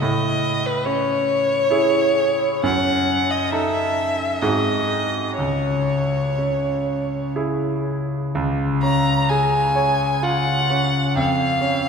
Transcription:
0.02 A2 D#5
0.66 B4
0.85 C#4 C#5
1.70 E4 G#4
2.63 F#2 F#5
3.31 D#5
3.51 D#4 A4 E5
4.41 G#2 C4 F#4 G#4 D#5
5.37 C#2 C#5
6.38 C#4
7.36 E4 G#4
8.35 C#2
8.82 C#4 A#5
9.29 G#4 G#5
9.75 C#5
10.23 F4 F#5
10.70 C#4
11.16 F2 F5
11.61 C#4

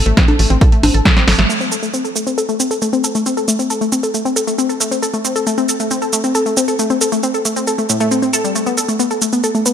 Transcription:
0.06 A1 A3, closed hi-hat
0.17 C4, kick, snare, closed hi-hat
0.28 A4, closed hi-hat, high conga
0.39 A1 A3, open hi-hat
0.50 A1 C4, closed hi-hat
0.61 A4, kick, closed hi-hat
0.72 A3, closed hi-hat
0.83 A1 C4, open hi-hat, high conga
0.94 A1 A4, closed hi-hat
1.05 A3, kick, snare, closed hi-hat
1.16 C4, snare, closed hi-hat
1.27 A1 A4, snare, open hi-hat
1.38 A1 A3, snare, closed hi-hat
1.50 A3, shaker
1.61 C4, shaker
1.72 A4, shaker
1.83 A3, shaker
1.94 C4, shaker
2.05 A4, shaker
2.16 A3, shaker
2.27 C4, shaker
2.38 A4, shaker
2.49 A3, shaker
2.60 C4, shaker
2.71 A4, shaker
2.82 A3, shaker
2.93 C4, shaker
3.04 A4, shaker
3.15 A3, shaker
3.26 C4, shaker
3.37 A4, shaker
3.48 A3, shaker
3.59 C4, shaker
3.70 A4, shaker
3.81 A3, shaker
3.92 C4, shaker
4.03 A4, shaker
4.14 A3, shaker
4.25 C4, shaker
4.36 A4, shaker
4.47 A3, shaker
4.58 C4, shaker
4.69 A4, shaker
4.80 A3, shaker
4.91 C4, shaker
5.03 A4, shaker
5.14 A3, shaker
5.25 C4, shaker
5.36 A4, shaker
5.47 A3, shaker
5.58 C4, shaker
5.69 A4, shaker
5.80 A3, shaker
5.91 C4, shaker
6.02 A4, shaker
6.13 A3, shaker
6.24 C4, shaker
6.35 A4, shaker
6.46 A3, shaker
6.57 C4, shaker
6.68 A4, shaker
6.79 A3, shaker
6.90 C4, shaker
7.01 A4, shaker
7.12 A3, shaker
7.23 C4, shaker
7.34 A4, shaker
7.45 A3, shaker
7.56 C4, shaker
7.67 A4, shaker
7.78 A3, shaker
7.89 A2, shaker
8.00 A3, shaker
8.11 C4, shaker
8.22 C4, shaker
8.33 A4, shaker
8.44 G3, shaker
8.55 A3, shaker
8.66 B3, shaker
8.77 A4, shaker
8.89 A3, shaker
8.99 B3, shaker
9.11 A4, shaker
9.22 A3, shaker
9.33 B3, shaker
9.44 A4, shaker
9.55 A3, shaker
9.66 B3, shaker

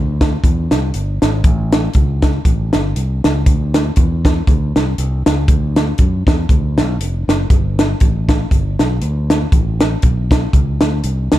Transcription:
Already playing: D2
0.21 kick, snare, closed hi-hat
0.43 E2, kick, closed hi-hat
0.71 C2, snare, closed hi-hat
0.94 G1, closed hi-hat
1.22 G#1, snare, closed hi-hat
1.44 A1, kick, closed hi-hat
1.72 snare, closed hi-hat
1.94 C#2, kick, closed hi-hat
2.22 kick, snare, closed hi-hat
2.45 A1, kick, closed hi-hat
2.73 G1, snare, closed hi-hat
2.96 C2, closed hi-hat
3.24 C#2, snare, closed hi-hat
3.46 D2, kick, closed hi-hat
3.74 snare, closed hi-hat
3.96 E2, kick, closed hi-hat
4.25 kick, snare, closed hi-hat
4.47 D2, kick, closed hi-hat
4.76 C2, snare, closed hi-hat
4.98 C2, closed hi-hat
5.26 C#2, snare, closed hi-hat
5.48 D2, kick, closed hi-hat
5.76 snare, closed hi-hat
5.98 F#2, kick, closed hi-hat
6.27 E2, kick, snare, closed hi-hat
6.49 D2, kick, closed hi-hat
6.77 B1, snare, closed hi-hat
6.99 F1, closed hi-hat
7.28 F#1, snare, closed hi-hat
7.50 G1, kick, closed hi-hat
7.79 snare, closed hi-hat
8.00 A1, kick, closed hi-hat
8.29 kick, snare, closed hi-hat
8.51 G1, kick, closed hi-hat
8.79 B1, snare, closed hi-hat
9.01 D2, closed hi-hat
9.30 snare, closed hi-hat
9.52 A1, kick, closed hi-hat
9.80 snare, closed hi-hat
10.02 B1, kick, closed hi-hat
10.31 kick, snare, closed hi-hat
10.53 C#2, kick, closed hi-hat
10.81 D2, snare, closed hi-hat
11.04 C2, closed hi-hat
11.32 C#2, snare, closed hi-hat

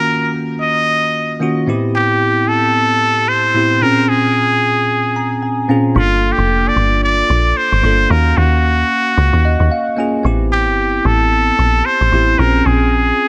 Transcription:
Already playing: D#3 A#3 C#4 F4 F#4 A#4
0.61 D#5
1.40 D#3 A#3 C#4 F4 F#4
1.66 A2 B3 C4 E4 G4
1.95 G4
2.48 A4
3.29 C5
3.54 A2 B3 C4 E4 G4
3.81 A#2 C4 C#4 F4 G#4 A#4
4.09 G#4
5.16 A#5
5.43 G#5
5.68 A#2 C4 C#4 F4 G#4 F5
5.95 G1 A#3 D4 F4 A4
6.32 G4
6.38 F1
6.68 D5
6.76 G1
7.04 D5
7.30 A#1
7.57 C5
7.72 G1
7.82 G1 A#3 D4 F4 A4
8.09 D#2 A#3 C#4 F#4 A#4 F5
8.37 D#2 F#4
9.18 C#2
9.33 D#2
9.45 D#5
9.60 D#2
9.71 F5
9.97 A#3 C#4 F4 G#4 G#5
10.23 A1 B3 C4 E4 G4
10.52 G4
10.67 G1
11.05 A1 A4
11.59 A#1
11.86 C5
12.01 A1
12.11 A1 B3 C4 E4 G4
12.38 A#1 C4 C#4 F4 G#4 A#4
12.66 A#1 G#4

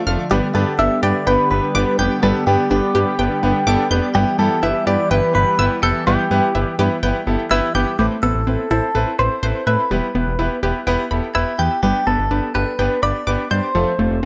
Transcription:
Already playing: D3 F3 A3 F4
0.07 F1 A3 D4 F4 A4 F6
0.31 G1 G3 B3 D4 G4 B4
0.55 G2 B3 D4 G4 A4 B4
0.79 G1 B3 D4 G4 A4 E5
1.03 G2 B3 D4 G4 B4 D5
1.27 G1 B3 D4 G4 B4 G5
1.51 G1 B3 D4 G4 B4
1.75 G1 B3 D4 G4 B4 D6
1.99 F1 B3 D4 G4 B4 G6
2.23 G1 G3 B3 D4 G4 A4 B4
2.47 G2 B3 D4 G4 B4
2.71 G1 B3 D4 G4 B4
2.95 G2 B3 D4 G4 B4
3.19 G1 B3 D4 G4 B4 G5
3.43 G1 B3 D4 G4 B4
3.67 G1 B3 D4 G4 A4 D6
3.91 F1 B3 D4 G4 B4 G6
4.15 G1 E3 G3 B3 E4 G4 B4
4.39 G2 B3 E4 G4 A4
4.63 G1 B3 E4 G4 B4 E5
4.87 G2 B3 E4 G4 B4 D5
5.11 G1 B3 E4 G4 B4 G5
5.35 G1 B3 E4 G4 B4
5.59 G1 B3 E4 G4 B4 E6
5.83 F1 B3 E4 G4 A4 B4 G6
6.07 G1 G3 B3 E4 G4 B4
6.31 G2 B3 E4 G4 B4
6.55 G1 B3 E4 G4 B4
6.79 G2 B3 E4 G4 B4
7.03 G1 B3 E4 G4 B4 G5
7.27 G1 B3 E4 G4 A4
7.51 G1 B3 E4 G4 B4 E6
7.75 G1 B3 E4 G4 B4 G6
7.99 A1 A3 C4 E4 G4 A4 B4
8.23 A1 B3 C4 E4 A4 B4
8.35 A1
8.47 A1 C4 E4 A4 B4
8.71 A1 C4 E4 A4 C5
8.95 A1 C4 E4 A4 B4
9.19 A1 C4 E4 A4 B4 C5
9.43 A1 C4 E4 A4 B4 C5
9.67 A2 C4 E4 A4 B4 E5
9.91 E1 G3 B3 E4 G4 B4
10.15 E1 B3 E4 G4 B4
10.27 E1
10.39 E1 B3 E4 G4 B4
10.63 E1 B3 E4 G4 B4
10.87 E1 B3 E4 G4 B4 G5
11.11 E1 B3 E4 G4 A4 B5
11.35 E1 B3 E4 G4 B4 E6
11.59 E2 B3 E4 G4 B4 G6
11.83 G1 G3 B3 D4 G4 B4
12.07 G1 B3 D4 G4 A4 B4
12.19 G1
12.31 G1 B3 D4 G4 B4
12.55 G1 B3 D4 G4 A4 B4
12.79 G1 B3 D4 G4 B4 G5
13.03 G1 B3 D4 G4 B4 D5 B5
13.27 G1 B3 D4 G4 B4 D6
13.51 G2 B3 D4 G4 C5 D5 G6
13.75 F1 F3 A3 C4 F4 A4
13.99 F1 A3 C4 F4 A4
14.11 F1

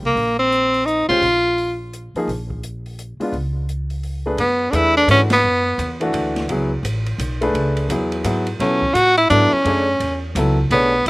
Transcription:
0.03 C2 A#3
0.16 A#1, open hi-hat
0.39 C4
0.52 closed hi-hat
0.74 open hi-hat
0.86 D#4, closed hi-hat
1.08 B1 G#3 C#4 F4 G4 C5, open hi-hat
1.22 A#1, open hi-hat
1.58 open hi-hat
1.93 closed hi-hat
2.14 F3 A#3 D#4 G#4, muted upright bass stroke, open hi-hat
2.28 A#1, open hi-hat
2.50 kick
2.63 closed hi-hat
2.86 open hi-hat
2.99 closed hi-hat
3.19 G#3 B3 D4 F4, muted upright bass stroke, open hi-hat
3.32 C#2, open hi-hat
3.69 closed hi-hat
3.90 open hi-hat
4.03 open hi-hat
4.26 A3 D4 G#4 B4
4.37 F#2 B3, ride
4.71 E2 A3 D4 G#4 B4, hi-hat pedal, ride
4.76 E4
4.97 D4
5.07 G#2 E3 A3 C#4 D4 F#4, hi-hat pedal, ride
5.30 B3, snare, ride
5.43 F#2
5.78 E2, hi-hat pedal, ride
6.00 E3 A3 D4 F#4, ride
6.13 D2, ride
6.36 snare, ride
6.48 C#2 F#3 B3 E4 G#4, ride
6.83 A1, hi-hat pedal, ride
7.06 ride
7.18 B1, hi-hat pedal, ride
7.41 A3 D4 G#4 B4, ride
7.54 C#2, ride
7.77 ride
7.89 E2 F#3 B3 E4 G#4, hi-hat pedal, ride
8.12 ride
8.24 G#2 F#3 B3 E4 G#4, hi-hat pedal, ride
8.47 ride
8.59 B2 F#3 B3 C#4 E4 A4, snare, ride
8.82 kick
8.94 A2 F#4, hi-hat pedal, ride
9.17 E4, ride
9.30 G#2 F#3 B3 D4 E4 A4, hi-hat pedal, ride
9.52 C#4, muted upright bass stroke
9.65 F#2 A3 D4 G#4 C#5, ride
10.00 E2, ride
10.35 C#2 F#3 B3 E4 A4, hi-hat pedal, ride
10.70 B1 A3 B3 D4 G#4 C#5, ride
11.06 A1, hi-hat pedal, ride

